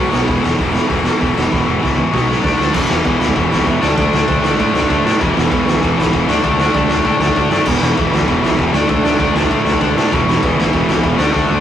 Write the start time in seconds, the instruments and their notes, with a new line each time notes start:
Already playing: overdriven electric guitar B2 F#3 B3
0.09 picked electric bass B1, distorted electric guitar B2 F#3 B3, snare
0.25 picked electric bass E1, distorted electric guitar E2 B2 E3, kick, open hi-hat
0.42 picked electric bass E1, distorted electric guitar E2 B2 E3, snare
0.56 picked electric bass E1, distorted electric guitar E2 B2 E3, kick, open hi-hat
0.72 distorted electric guitar E2 B2 E3, snare
0.87 picked electric bass E1, distorted electric guitar E2 B2 E3, kick, open hi-hat
1.04 distorted electric guitar E2 B2 E3, snare
1.20 picked electric bass E1, distorted electric guitar E2 B2 E3, kick, open hi-hat
1.35 picked electric bass E1, distorted electric guitar E2 B2 E3, snare
1.50 picked electric bass E1, distorted electric guitar E2 B2 E3, kick, snare
1.66 picked electric bass E1, distorted electric guitar E2 B2 E3
1.81 picked electric bass C#2, distorted electric guitar E2 B2 E3, kick, snare
1.97 distorted electric guitar E2 B2 E3
2.12 picked electric bass B1, distorted electric guitar B2 F#3 B3, kick, snare
2.28 distorted electric guitar B2 F#3 B3, snare
2.42 picked electric bass D2, distorted electric guitar D3 A3 D4, kick, snare
2.58 picked electric bass D2, distorted electric guitar D3 A3 D4, snare
2.72 picked electric bass E1, distorted electric guitar E2 B2 E3, kick, crash
2.88 picked electric bass E1, distorted electric guitar E2 B2 E3, snare
3.04 distorted electric guitar E2 B2 E3, picked electric bass E2, kick, ride
3.19 picked electric bass D2, distorted electric guitar E2 B2 E3, snare
3.28 kick
3.35 picked electric bass E1, distorted electric guitar E2 B2 E3, kick, ride
3.51 picked electric bass G#1, distorted electric guitar E2 B2 E3, snare
3.59 kick
3.66 distorted electric guitar E2 B2 E3, picked electric bass E2, kick, ride
3.80 picked electric bass D2, distorted electric guitar D3 A3 D4, snare
3.96 picked electric bass D2, distorted electric guitar D3 A3 D4, kick, ride
4.13 picked electric bass D2, distorted electric guitar D3 A3 D4, snare
4.27 picked electric bass D2, distorted electric guitar D3 A3 D4, kick, ride
4.43 picked electric bass D2, distorted electric guitar D3 A3 D4, snare
4.52 kick
4.59 picked electric bass A2, distorted electric guitar D3 A3 D4, kick, ride
4.73 picked electric bass D2, distorted electric guitar D3 A3 D4, snare
4.82 kick
4.88 picked electric bass D2, distorted electric guitar D3 A3 D4, kick, ride
5.04 picked electric bass A2, distorted electric guitar D3 A3 D4, snare
5.20 picked electric bass E1, distorted electric guitar E2 B2 E3, kick, ride
5.34 picked electric bass E1, distorted electric guitar E2 B2 E3, snare
5.51 distorted electric guitar E2 B2 E3, picked electric bass E2, kick, ride
5.66 picked electric bass D2, distorted electric guitar E2 B2 E3, snare
5.75 kick
5.81 picked electric bass E1, distorted electric guitar E2 B2 E3, kick, ride
5.97 picked electric bass G#1, distorted electric guitar E2 B2 E3, snare
6.06 kick
6.13 picked electric bass E1, distorted electric guitar E2 B2 E3, kick, ride
6.28 picked electric bass D2, distorted electric guitar D3 A3 D4, snare
6.43 picked electric bass D2, distorted electric guitar D3 A3 D4, kick, ride
6.58 picked electric bass D2, distorted electric guitar D3 A3 D4, snare
6.74 picked electric bass D2, distorted electric guitar D3 A3 D4, kick, ride
6.90 picked electric bass D2, distorted electric guitar D3 A3 D4, snare
6.97 kick
7.04 picked electric bass A2, distorted electric guitar D3 A3 D4, kick, ride
7.20 picked electric bass D2, distorted electric guitar D3 A3 D4, snare
7.28 kick
7.36 picked electric bass D2, distorted electric guitar D3 A3 D4, kick, ride
7.50 picked electric bass F#2, distorted electric guitar D3 A3 D4, snare
7.66 picked electric bass E1, distorted electric guitar E2 B2 E3, kick, crash
7.81 picked electric bass E1, distorted electric guitar E2 B2 E3, snare
7.96 distorted electric guitar E2 B2 E3, picked electric bass E2, kick, ride
8.12 picked electric bass D2, distorted electric guitar E2 B2 E3, snare
8.20 kick
8.27 picked electric bass E1, distorted electric guitar E2 B2 E3, kick, ride
8.42 picked electric bass G#1, distorted electric guitar E2 B2 E3, snare
8.51 kick
8.58 picked electric bass E1, distorted electric guitar E2 B2 E3, kick, ride
8.73 picked electric bass D2, distorted electric guitar D3 A3 D4, snare
8.88 picked electric bass D2, distorted electric guitar D3 A3 D4, kick, ride
9.04 picked electric bass D2, distorted electric guitar D3 A3 D4, snare
9.19 picked electric bass D2, distorted electric guitar D3 A3 D4, kick, ride
9.34 picked electric bass D2, distorted electric guitar D3 A3 D4, snare
9.43 kick
9.50 picked electric bass A2, distorted electric guitar D3 A3 D4, kick, ride
9.65 picked electric bass D2, distorted electric guitar D3 A3 D4, snare
9.74 kick
9.80 picked electric bass D2, distorted electric guitar D3 A3 D4, kick, ride
9.96 picked electric bass A2, distorted electric guitar D3 A3 D4, snare
10.12 picked electric bass E1, distorted electric guitar E2 B2 E3, kick, ride
10.25 picked electric bass E1, distorted electric guitar B2 E3, snare
10.30 distorted electric guitar E2
10.43 picked electric bass E2, distorted electric guitar E2 B2 E3, kick, ride
10.56 picked electric bass D2, distorted electric guitar E2 B2 E3, snare
10.66 kick
10.73 picked electric bass E1, distorted electric guitar E2 B2 E3, kick, ride
10.88 picked electric bass G#1, distorted electric guitar E2 B2 E3, snare
10.96 kick
11.03 picked electric bass E1, distorted electric guitar E2 B2 E3, kick, ride
11.19 picked electric bass D2, distorted electric guitar D3 A3 D4, snare
11.33 picked electric bass D2, distorted electric guitar D3 A3 D4, kick, snare
11.49 picked electric bass D2, distorted electric guitar D3 A3 D4